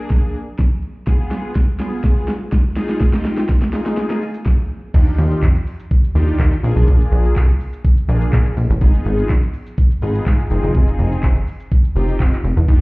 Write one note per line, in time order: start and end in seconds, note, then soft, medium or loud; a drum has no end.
0.00 0.37 A#3 medium
0.00 0.37 D4 medium
0.00 0.37 G#4 loud
0.10 kick loud
0.10 snare medium
0.10 closed hi-hat medium
0.34 closed hi-hat soft
0.59 kick loud
0.59 snare medium
0.59 closed hi-hat medium
0.83 closed hi-hat medium
1.07 1.14 B3 medium
1.07 1.14 F4 medium
1.07 1.14 G#4 loud
1.07 kick loud
1.07 snare medium
1.07 closed hi-hat medium
1.20 1.51 B3 medium
1.20 1.51 F4 medium
1.20 1.51 G#4 loud
1.31 snare medium
1.31 closed hi-hat soft
1.55 kick loud
1.55 snare medium
1.55 closed hi-hat medium
1.80 2.31 B3 medium
1.80 2.31 F4 medium
1.80 2.31 G#4 loud
1.80 snare medium
1.80 closed hi-hat soft
2.04 kick loud
2.04 snare medium
2.04 closed hi-hat medium
2.28 snare medium
2.28 closed hi-hat medium
2.52 kick loud
2.52 snare loud
2.52 closed hi-hat medium
2.76 3.06 D#4 medium
2.76 3.06 F4 medium
2.76 3.06 G#4 loud
2.76 snare loud
2.76 closed hi-hat medium
2.89 snare loud
3.01 kick loud
3.01 snare loud
3.01 closed hi-hat medium
3.01 shaker medium
3.13 3.45 D#4 medium
3.13 3.45 F4 medium
3.13 3.45 G4 medium
3.13 snare loud
3.13 shaker medium
3.25 snare loud
3.25 open hi-hat medium
3.25 shaker soft
3.38 snare loud
3.38 shaker medium
3.49 kick loud
3.49 snare loud
3.49 closed hi-hat medium
3.49 shaker medium
3.62 snare loud
3.62 shaker soft
3.73 4.24 D#4 medium
3.73 4.24 F4 medium
3.73 4.24 G#4 loud
3.73 snare loud
3.73 open hi-hat medium
3.73 shaker soft
3.86 snare loud
3.86 shaker medium
3.97 snare loud
3.97 closed hi-hat medium
3.97 shaker medium
4.10 snare loud
4.10 shaker medium
4.22 open hi-hat medium
4.22 shaker medium
4.34 shaker medium
4.46 kick loud
4.46 snare medium
4.94 5.12 D#2 loud
4.94 5.45 D4 medium
4.94 5.45 D#4 medium
4.94 5.45 F4 medium
4.94 5.45 G4 loud
4.94 kick loud
4.94 closed hi-hat medium
4.94 crash loud
4.94 shaker medium
5.07 shaker medium
5.18 5.36 D#2 loud
5.18 open hi-hat medium
5.18 shaker soft
5.31 shaker medium
5.43 5.60 F2 loud
5.43 kick loud
5.43 clap loud
5.43 closed hi-hat medium
5.43 shaker medium
5.56 shaker soft
5.67 open hi-hat medium
5.67 shaker soft
5.80 shaker medium
5.91 kick loud
5.91 closed hi-hat medium
5.91 shaker medium
6.04 shaker medium
6.15 6.33 D#2 medium
6.15 6.54 D4 medium
6.15 6.54 D#4 medium
6.15 6.54 F4 medium
6.15 6.54 G4 medium
6.15 open hi-hat medium
6.15 shaker medium
6.28 shaker medium
6.40 6.49 D#3 loud
6.40 kick loud
6.40 clap loud
6.40 closed hi-hat medium
6.40 shaker medium
6.53 shaker medium
6.63 6.73 A#1 loud
6.63 7.41 A#3 medium
6.63 7.41 D4 medium
6.63 7.41 F4 medium
6.63 7.42 G#4 loud
6.63 open hi-hat medium
6.63 shaker medium
6.76 6.85 B1 medium
6.76 shaker medium
6.88 7.06 A#1 loud
6.88 kick loud
6.88 closed hi-hat medium
6.88 shaker medium
7.01 shaker medium
7.12 7.30 A#1 loud
7.12 open hi-hat medium
7.12 shaker soft
7.25 shaker medium
7.36 7.54 C2 medium
7.36 kick loud
7.36 clap loud
7.36 closed hi-hat medium
7.36 shaker medium
7.49 shaker soft
7.60 open hi-hat medium
7.60 shaker soft
7.73 shaker medium
7.85 kick loud
7.85 closed hi-hat medium
7.85 shaker medium
7.97 shaker medium
8.09 8.26 A#1 loud
8.09 8.47 A#3 medium
8.09 8.47 D4 medium
8.09 8.48 F4 medium
8.09 8.48 G#4 loud
8.09 open hi-hat medium
8.09 shaker medium
8.22 shaker medium
8.33 8.42 A#2 loud
8.33 kick loud
8.33 clap loud
8.33 closed hi-hat medium
8.33 shaker medium
8.46 shaker medium
8.57 8.67 A#1 loud
8.57 open hi-hat medium
8.57 shaker medium
8.70 8.78 A1 loud
8.70 shaker medium
8.81 8.99 G#1 loud
8.81 9.32 B3 medium
8.81 9.32 D#4 medium
8.81 9.32 F4 medium
8.81 9.32 G#4 loud
8.81 kick loud
8.81 closed hi-hat medium
8.81 shaker medium
8.94 shaker medium
9.05 9.23 G#1 loud
9.05 open hi-hat medium
9.05 shaker soft
9.18 shaker medium
9.29 9.47 A#1 loud
9.29 kick loud
9.29 clap loud
9.29 closed hi-hat medium
9.29 shaker medium
9.42 shaker soft
9.53 open hi-hat medium
9.53 shaker soft
9.66 shaker medium
9.78 kick loud
9.78 closed hi-hat medium
9.78 shaker medium
9.91 shaker medium
10.02 10.20 G#1 medium
10.02 10.41 B3 medium
10.02 10.41 D#4 medium
10.02 10.41 F4 medium
10.02 10.41 G#4 loud
10.02 open hi-hat medium
10.02 shaker medium
10.15 shaker medium
10.26 10.36 G#2 loud
10.26 kick loud
10.26 clap loud
10.26 closed hi-hat medium
10.26 shaker medium
10.39 shaker medium
10.50 10.60 F1 loud
10.50 11.28 C4 medium
10.50 11.28 D#4 medium
10.50 11.28 F4 medium
10.50 11.28 G#4 loud
10.50 open hi-hat medium
10.50 shaker medium
10.64 10.72 F#1 medium
10.64 shaker medium
10.75 10.93 F1 loud
10.75 kick loud
10.75 closed hi-hat medium
10.75 shaker medium
10.87 shaker medium
10.99 11.17 F1 loud
10.99 open hi-hat medium
10.99 shaker soft
11.12 shaker medium
11.23 11.41 G1 loud
11.23 kick loud
11.23 clap loud
11.23 closed hi-hat medium
11.23 shaker medium
11.36 shaker soft
11.47 open hi-hat medium
11.47 shaker soft
11.60 shaker medium
11.72 kick loud
11.72 closed hi-hat medium
11.72 shaker medium
11.85 shaker medium
11.96 12.13 F1 loud
11.96 12.34 C4 medium
11.96 12.34 D#4 medium
11.96 12.35 F4 medium
11.96 12.35 G4 loud
11.96 open hi-hat medium
11.96 shaker medium
12.09 shaker medium
12.20 12.30 F2 loud
12.20 kick loud
12.20 clap loud
12.20 closed hi-hat medium
12.20 shaker medium
12.33 clap medium
12.33 shaker medium
12.44 12.54 F1 medium
12.44 open hi-hat medium
12.44 shaker medium
12.57 12.65 E2 medium
12.57 shaker medium
12.68 12.81 D#2 loud
12.68 12.81 D4 medium
12.68 12.81 D#4 medium
12.68 12.81 F4 medium
12.68 12.81 G4 medium
12.68 kick loud
12.68 closed hi-hat medium
12.68 shaker medium